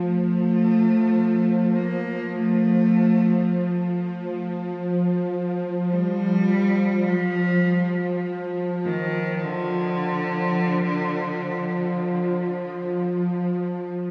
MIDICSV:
0, 0, Header, 1, 3, 480
1, 0, Start_track
1, 0, Tempo, 500000
1, 13545, End_track
2, 0, Start_track
2, 0, Title_t, "Cello"
2, 0, Program_c, 0, 42
2, 13, Note_on_c, 0, 57, 98
2, 1691, Note_on_c, 0, 58, 97
2, 1706, Note_off_c, 0, 57, 0
2, 2252, Note_on_c, 0, 57, 97
2, 2266, Note_off_c, 0, 58, 0
2, 3964, Note_off_c, 0, 57, 0
2, 5663, Note_on_c, 0, 55, 114
2, 6803, Note_on_c, 0, 53, 100
2, 6817, Note_off_c, 0, 55, 0
2, 7934, Note_off_c, 0, 53, 0
2, 8495, Note_on_c, 0, 51, 104
2, 9059, Note_on_c, 0, 50, 110
2, 9073, Note_off_c, 0, 51, 0
2, 12450, Note_off_c, 0, 50, 0
2, 13545, End_track
3, 0, Start_track
3, 0, Title_t, "Synth drone"
3, 0, Program_c, 1, 95
3, 0, Note_on_c, 1, 53, 62
3, 13545, Note_off_c, 1, 53, 0
3, 13545, End_track
0, 0, End_of_file